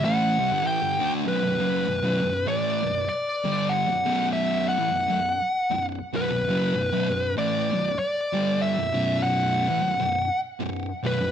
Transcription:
0.04 A2 E3 A3 F#5
0.39 C3 G3
0.51 G2 D3
0.64 A2 E3 G5
0.82 G2 D3
0.99 D3 A3 D4
1.24 B1 F#2 B4
1.43 B1 F#2
1.60 F#2 C#3 F#3
1.86 B1 F#2
2.03 B1 F#2
2.22 B1 F#2
2.46 A2 E3 A3 D5
2.83 B1 F#2
3.09 D5
3.44 G2 D3 G3
3.69 F#5
3.87 B1 F#2
4.05 B1 F#2 B2
4.33 E5
4.69 F#5
4.78 A2 E3
4.91 B1 F#2
5.08 B1 F#2
5.71 B1 F#2
6.13 B1 F#2 B4
6.31 B1 F#2
6.49 F#2 C#3 F#3
6.74 B1 F#2
6.93 B1 F#2
7.10 B1 F#2
7.36 A2 E3 A3 D5
7.72 B1 F#2
7.99 D5
8.33 G2 D3 G3
8.61 E5
8.77 B1 F#2
8.94 B1 F#2 B2
9.23 F#5
9.68 A2 E3
9.81 B1 F#2
9.99 B1 F#2
10.60 B1 F#2
11.03 B1 F#2 B4
11.21 B1 F#2

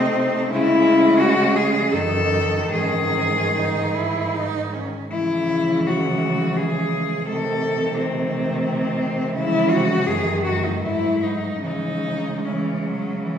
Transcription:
Already playing: C3 A3 C4 D#4
0.51 C#3 G#3 C#4 E4
1.20 F#4
1.56 G#4
1.92 F#2 D#3 D#4 A4
2.72 G#2 C#4 G#4
3.57 D#4
3.95 E4
4.35 D#4
4.73 C#4
5.11 C#3 E3 G#3 E4
5.87 F#4
6.57 G#4
7.28 C3 D#3 A3 A4
7.97 C4
9.35 C#3 E3 G#3 E4
9.70 F#4
10.07 F#2 D#3 A3 G#4
10.44 F#4
10.64 D#4
10.82 G#2 F#3 E4
11.23 D#4
11.62 C#3 E3 G#3 D#4
12.45 E3 C#4
12.86 F#3
13.23 E3

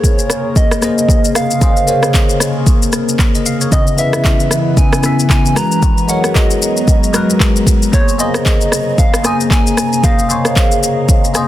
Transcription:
Already playing: C3 C#3 A#3 G#4 A#4 C5 C#5
0.04 kick, shaker
0.19 shaker
0.30 cross-stick, shaker
0.56 D#5, kick, shaker
0.71 cross-stick, shaker
0.81 A#3 G#4 C5 D#5, cross-stick, shaker
0.98 shaker
1.09 kick, shaker
1.25 shaker
1.35 F5, cross-stick, shaker
1.51 shaker
1.60 A#3 G#4 C5 D#5 F5, kick, shaker
1.77 shaker
1.87 A#3 G#4 C5 C#5, shaker
2.03 cross-stick, shaker
2.14 kick, clap, shaker
2.29 shaker
2.40 cross-stick, shaker
2.66 kick, shaker
2.82 shaker
2.93 cross-stick, shaker
3.09 shaker
3.19 kick, clap, shaker
3.35 D#5, shaker
3.46 F5, shaker
3.61 C#5, shaker
3.71 C#3 E3 B3 C#4 E4 B4 D#5, kick, shaker
3.87 shaker
3.97 C#3 B3 E4 E5, shaker
4.13 cross-stick, shaker
4.25 kick, clap, shaker
4.40 shaker
4.51 cross-stick, shaker
4.77 G#5, kick, shaker
4.93 cross-stick, shaker
5.02 C#3 B3 E4 E5, cross-stick, shaker
5.19 shaker
5.30 G#5, kick, clap, shaker
5.46 shaker
5.55 F#3 G#3 B3 F#4 G#4 A#4 B4 A#5, cross-stick, shaker
5.72 shaker
5.82 kick, shaker
5.98 shaker
6.08 G#3 F#4 A#4 C#5 F#5, shaker
6.24 cross-stick, shaker
6.35 D#5, kick, clap, shaker
6.50 shaker
6.62 shaker
6.77 shaker
6.88 kick, shaker
7.04 shaker
7.13 G#3 F#4 A#4 B4, cross-stick, shaker
7.30 shaker
7.40 kick, clap, shaker
7.56 shaker
7.67 kick, shaker
7.82 shaker
7.92 C3 C#3 A#3 G#4 C5 C#5, kick, shaker
8.08 shaker
8.18 A#3 G#4 C5 D#5, shaker
8.34 cross-stick, shaker
8.46 kick, clap, shaker
8.61 shaker
8.72 cross-stick, shaker
8.98 F5, kick, shaker
9.14 cross-stick, shaker
9.23 A#3 G#4 C5 D#5 G#5, cross-stick, shaker
9.41 shaker
9.51 G#5, kick, clap, shaker
9.67 shaker
9.77 cross-stick, shaker
9.93 shaker
10.02 A#3 G#4 C5 D#5 F5, kick, shaker
10.19 shaker
10.29 A#3 G#4 C5 C#5 F5, shaker
10.45 cross-stick, shaker
10.56 kick, clap, shaker
10.71 shaker
10.83 shaker
11.09 kick, shaker
11.25 shaker
11.34 A#3 G#4 C5 D#5, cross-stick, shaker

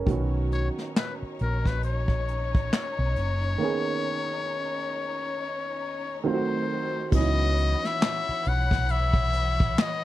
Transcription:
Already playing: A#4
0.06 B1 D#3 F#3 B3 C#4 D#4 C#5, kick, closed hi-hat
0.10 C#4 F#4
0.52 C#5, closed hi-hat
0.78 snare
0.96 B4, snare, clap, closed hi-hat
1.23 muted fingered electric bass stroke
1.39 A#1 A#4, closed hi-hat
1.66 B4, kick, snare
1.83 C#5, closed hi-hat
2.08 kick
2.28 closed hi-hat
2.55 kick
2.73 snare, clap, closed hi-hat
2.99 B1
3.16 F#1, closed hi-hat
3.42 closed hi-hat
3.58 D#3 A#3 B3
3.63 C#4 G#4
6.23 D#3 F#3 A3 C4 F4 C5
6.34 F#4
7.11 C#2 E3 F#3 B3 C#5 F#5 B5, kick, crash
7.15 C#4 D#4 D#5
7.23 E4
7.58 closed hi-hat
7.84 E5, snare, closed hi-hat
8.02 snare, clap, closed hi-hat
8.29 muted fingered electric bass stroke
8.45 B1 F#5, closed hi-hat
8.71 kick, snare, closed hi-hat
8.89 E5, closed hi-hat
9.14 kick
9.33 closed hi-hat
9.60 kick
9.78 D#5, snare, clap, closed hi-hat

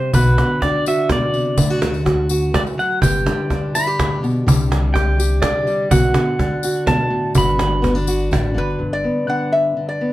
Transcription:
Already playing: C3 G3 G4 C5
0.14 B1 B2 F#4 B4, cajon bass, tambourine
0.38 D3, cajon slap
0.62 D4 D5, cajon bass, cajon slap
0.86 F#4 E5, cajon slap, tambourine
0.98 cajon slap
1.09 B2 D5, cajon bass, cajon slap
1.22 cajon slap
1.34 C3, tambourine
1.58 D2 D3 E4, cajon bass, tambourine
1.70 F#4
1.82 A3, cajon slap
1.94 tambourine
2.05 F#4, cajon bass, cajon slap
2.29 F#4, cajon slap, tambourine
2.43 tambourine
2.54 E3 D5, cajon bass, cajon slap
2.67 tambourine
2.78 F#3 F#5, tambourine
2.90 cajon slap
3.02 G1 G2 G4 G5, cajon bass, tambourine
3.26 D3, cajon slap
3.50 D4, cajon bass, cajon slap
3.75 E4 B5, cajon slap, tambourine
3.87 G4, cajon slap
3.99 A2, cajon bass, cajon slap
4.12 cajon slap
4.23 B2, tambourine
4.46 C2 C3 G4, cajon bass, tambourine
4.71 G3, cajon slap
4.94 G4 G5, cajon bass, cajon slap
5.19 G4, cajon slap, tambourine
5.31 cajon slap
5.42 G4 D5, cajon bass, cajon slap
5.55 cajon slap
5.67 G3, tambourine
5.91 B1 B2 F#4 F#5, cajon bass, tambourine
6.14 D3, cajon slap
6.39 D4, cajon bass, cajon slap
6.63 F#4, cajon slap, tambourine
6.75 cajon slap
6.87 B2 A5, cajon bass, cajon slap
7.00 cajon slap
7.10 A2
7.35 G1 G2 F#4 B5, cajon bass, tambourine
7.58 D3, cajon slap
7.82 B3, cajon bass, cajon slap, tambourine
7.95 D4, cajon slap, tambourine
8.07 F#4, tambourine
8.19 tambourine
8.31 A1 D4, cajon bass, cajon slap, tambourine
8.45 cajon slap
8.54 G1 D3 B4
8.69 cajon slap
8.79 G1 G2
8.93 D5
9.04 B3
9.27 D3 D4 F#5
9.52 E5
9.77 D3
9.89 D5
10.01 B3

